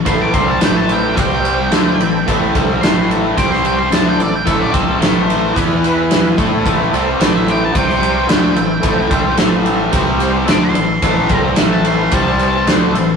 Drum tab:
RD |x-x-x-x-x-x-x-x-|x-x-x-x-x-x-x-x-|x-x-x-x-x-x-x-x-|x-x-x-x-x-x-x-x-|
SD |----o-------o---|----o----o--o---|----o-------o---|----o----o--o---|
BD |o-o-----o-------|o-o-----o-------|o-o-----o-----o-|o-------o-------|

RD |x-x-x-x-x-x-x-x-|x-x-x-x-x-x-x-x-|
SD |----o-------o---|----o-------o---|
BD |o-o-----o-------|o-o-----o-------|